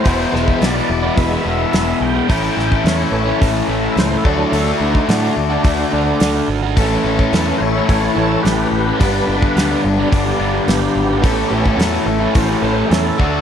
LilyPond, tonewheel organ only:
<<
  \new Staff \with { instrumentName = "Tonewheel organ" } { \time 4/4 \key a \mixolydian \tempo 4 = 107 c''4 d''4 e''4. g''8~ | g''4 cis''4 \tuplet 3/2 { r4 e''8 c''8 a'8 e'8 } | \tuplet 3/2 { a'8 e'8 dis'8 d'8 d'4~ } d'4~ d'16 r8. | r4. <e' c'' cis''>8 <e' cis''>8 <e' cis''>8 <g' b'>8 <g' b'>8 |
b'8 b'4 r8 d''16 g'16 d''16 g'16 <b g'>4~ | <b g'>4 r4 c''16 g'16 c''16 g'16 a'4 | }
  \new Staff \with { instrumentName = "Tonewheel organ" } { \time 4/4 \key a \mixolydian r8 <e gis b>8 r4 <e gis b>8 r4. | r4. <e a cis'>8 r4. <fis a d'>8 | r1 | <e a cis'>4. r4 <e a cis'>8 r4 |
<g b d'>8 r4 <g b d'>8 r2 | r8 <e a cis'>8 r4. <e a cis'>8 r4 | }
>>